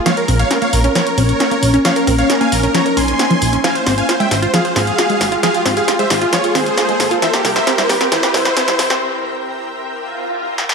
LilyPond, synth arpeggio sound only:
\new Staff \with { instrumentName = "Synth arpeggio sound" } { \time 4/4 \key f \minor \tempo 4 = 134 f16 r16 c'16 r16 des'16 bes16 r16 des'16 f16 r16 c'16 r16 des'16 bes16 r16 des'16 | f16 r16 c'16 r16 des'16 bes16 r16 des'16 f16 r16 des'16 r16 c'16 f16 r16 des'16 | f16 r16 c'16 r16 f'16 aes16 r16 f'16 f16 r16 c'16 r16 f'16 aes16 r16 f'16 | f16 r16 c'16 r16 f'16 aes16 r16 f'16 f16 r16 c'16 r16 f'16 aes16 r16 f'16 |
e16 r16 bes16 r16 c'16 g16 r16 c'16 e16 r16 bes16 r16 c'16 g16 r16 c'16 | r1 | }